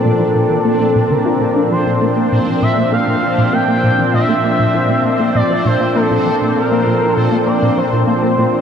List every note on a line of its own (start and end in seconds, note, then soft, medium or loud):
0.00 8.61 A#2 medium
0.00 8.61 F3 medium
0.00 8.61 C4 medium
0.00 8.61 D4 medium
0.00 1.12 A4 loud
0.00 1.74 D5 medium
0.04 0.12 A#2 medium
0.19 0.24 F3 medium
0.35 0.46 A#2 medium
0.50 0.61 E3 medium
0.65 0.76 A#3 medium
0.80 0.88 A#3 medium
0.95 1.07 A#2 medium
1.10 1.15 D3 medium
1.10 1.71 A#4 loud
1.26 1.37 F4 medium
1.41 1.45 A#2 medium
1.56 1.63 D4 medium
1.70 1.76 F3 medium
1.70 8.61 C5 medium
1.70 2.28 C5 loud
1.86 1.98 A#2 medium
2.02 2.06 A#3 medium
2.17 2.28 A#3 medium
2.32 2.39 A#2 medium
2.47 2.51 F3 medium
2.62 2.73 A#2 medium
2.62 2.90 E5 loud
2.77 2.82 A#3 medium
2.92 3.04 A#3 medium
2.92 3.55 F5 loud
3.07 3.15 A#2 medium
3.23 3.27 F3 medium
3.38 3.49 A#2 medium
3.53 3.57 A#3 medium
3.53 4.13 G5 loud
3.68 3.79 A#3 medium
3.83 3.91 A#2 medium
3.98 4.03 F3 medium
4.13 4.25 A#2 medium
4.13 5.31 E5 loud
4.29 4.33 A#3 medium
4.44 4.55 A#3 medium
4.59 4.66 A#2 medium
4.74 4.79 F3 medium
4.89 5.00 A#2 medium
5.04 5.09 A#3 medium
5.20 5.31 A#3 medium
5.35 5.42 A#2 medium
5.35 5.63 D5 loud
5.50 5.54 F3 medium
5.65 5.76 A#2 medium
5.65 5.97 C5 loud
5.80 5.85 A#3 medium
5.95 6.07 A#3 medium
5.95 6.56 A4 loud
6.11 6.18 A#2 medium
6.26 6.30 F3 medium
6.41 6.52 A#2 medium
6.56 6.60 A#3 medium
6.56 7.16 A#4 loud
6.71 6.83 A#3 medium
6.86 6.94 A#2 medium
7.02 7.06 F3 medium
7.16 7.28 A#2 medium
7.16 7.49 A4 loud
7.32 7.36 A#3 medium
7.47 7.58 A#3 medium
7.47 7.79 D5 loud
7.62 7.70 A#2 medium
7.77 7.82 F3 medium
7.77 8.61 C5 loud
7.92 8.04 A#2 medium
8.07 8.12 A#3 medium
8.23 8.34 A#3 medium
8.38 8.45 A#2 medium
8.53 8.57 F3 medium